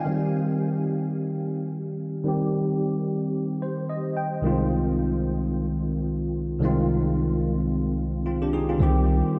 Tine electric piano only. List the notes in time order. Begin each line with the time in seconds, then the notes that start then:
0.05 D#3 G3 C4
0.10 F#4
0.17 G4
2.23 D#3 G3 C4
2.28 G4
3.62 C5
3.89 D#5
4.17 G5
4.42 C2 D#3 G#3 C4
4.46 F4
6.60 C2 D#3 G#3 C4
6.65 F4
8.26 C4 F4
8.42 D4 G4
8.53 D#4 G#4
8.69 C4 F4
8.78 D3 G3 C4
8.83 D#3 G4